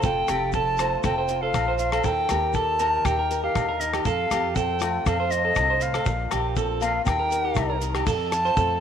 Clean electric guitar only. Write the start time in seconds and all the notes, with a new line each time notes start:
0.04 A4
0.30 G4
0.55 A4
0.80 C5
1.05 A4
1.18 C5
1.43 A4
1.68 C5
1.93 A4
2.05 A4
2.31 G4
2.56 A4
2.80 A#4
3.06 G4
3.19 A#4
3.44 G4
3.69 A#4
3.94 G4
4.06 A4
4.32 G4
4.56 A4
5.07 A4
5.20 C5
5.45 A4
5.70 C5
5.94 A4
6.07 muted clean electric guitar stroke
6.32 G4
6.58 A4
7.07 muted clean electric guitar stroke
7.19 A#4
7.45 G4
7.70 A#4
7.95 G4
8.07 A4
8.45 C5
8.57 A4